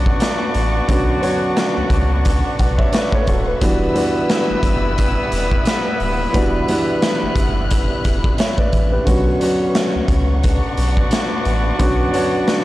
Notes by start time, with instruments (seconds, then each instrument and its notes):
Already playing: sub bass B1, grand piano D3 F#3 B3 C#4 D4 F#4, horn section B3 D4 F#4 D5, string section B4 F#5 C#6
0.06 kick
0.20 snare, closed hi-hat
0.54 sub bass A1, closed hi-hat
0.88 sub bass B1, grand piano D3 F#3 B3 C#4 F#4, kick, closed hi-hat
1.20 grand piano F#3 B3 D4 F#4 C#5, closed hi-hat
1.57 snare, closed hi-hat
1.77 sub bass C#2
1.90 sub bass C#2, kick, closed hi-hat
2.25 kick, closed hi-hat
2.59 sub bass B1, grand piano D5 F#5, kick, closed hi-hat
2.78 grand piano C#5 E5, kick
2.92 grand piano B4 D5, snare, closed hi-hat
3.12 grand piano A4 C#5, kick
3.27 sub bass D1, grand piano F#4 A4, kick, closed hi-hat
3.47 grand piano B4
3.61 sub bass E1, grand piano E3 G3 B3 D4 F#4, horn section G3 B3 E4 B4, string section E5 E6, kick, closed hi-hat
3.94 grand piano E3 G3 B3 D4 F#4, closed hi-hat
4.29 snare, closed hi-hat
4.50 sub bass F#1
4.63 sub bass F#1, kick, closed hi-hat
4.98 kick, closed hi-hat
5.32 sub bass E1, closed hi-hat
5.51 kick
5.65 snare, closed hi-hat
6.00 sub bass D1, open hi-hat
6.32 sub bass E1, grand piano E3 G3 B3 D4 F#4, string section F#6, kick, closed hi-hat
6.68 grand piano E3 G3 B3 D4 E4, closed hi-hat
7.02 snare, closed hi-hat
7.23 sub bass F#1
7.36 sub bass F#1, kick, closed hi-hat
7.71 kick, closed hi-hat
8.04 sub bass E1, kick, closed hi-hat
8.24 kick
8.38 grand piano C#5 E5, snare, closed hi-hat
8.58 grand piano B4 D5, kick
8.73 sub bass A1, kick, closed hi-hat
8.92 grand piano G4 B4
9.05 sub bass B1, grand piano D3 F#3 B3 C#4 F#4, string section B4 F#5 C#6, kick, closed hi-hat
9.40 grand piano F#3 B3 C#4 D4 F#4, closed hi-hat
9.75 snare, closed hi-hat
9.95 sub bass C#2
10.08 sub bass C#2, kick, closed hi-hat
10.43 horn section B3 D4 F#4 D5, kick, closed hi-hat
10.77 sub bass B1, closed hi-hat
10.97 kick
11.11 snare, closed hi-hat
11.45 sub bass A1, closed hi-hat
11.79 sub bass B1, grand piano D3 F#3 B3 C#4 F#4, kick, closed hi-hat
12.11 grand piano F#3 B3 D4 F#4 C#5, closed hi-hat
12.47 snare, closed hi-hat